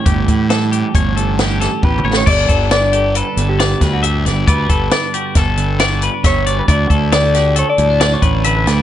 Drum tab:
CC |------------------------------|x-----------------------------|------------------------------|------------------------------|
HH |x--x--x--x--x--x--x--x--------|---x--x--x--x--x--x--x--x--x--|x--x--x--x--x--x--x--x--x--x--|x--x--x--x--x--x--x--x--x--x--|
SD |------o-----------o--o------o-|------o-----------o--o-----o--|------o-----o-----o-----o-----|------o--o--------o--------o--|
T1 |------------------------o-----|------------------------------|------------------------------|------------------------------|
T2 |--------------------------o---|------------------------------|------------------------------|------------------------------|
BD |o--o--------o-----------o-----|o--o-----------------o--------|o--o--------o-----------o-----|o--o-----------------o--------|